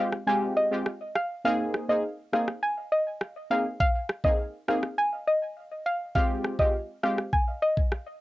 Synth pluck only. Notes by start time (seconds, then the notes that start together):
0.27 G#5
0.57 D#5
1.15 F5
1.45 F5
1.89 D#5
2.33 F5
2.63 G#5
2.92 D#5
3.51 F5
3.80 F5
4.24 D#5
4.68 F5
4.98 G#5
5.27 D#5
5.86 F5
6.15 F5
6.60 D#5
7.03 F5
7.33 G#5
7.62 D#5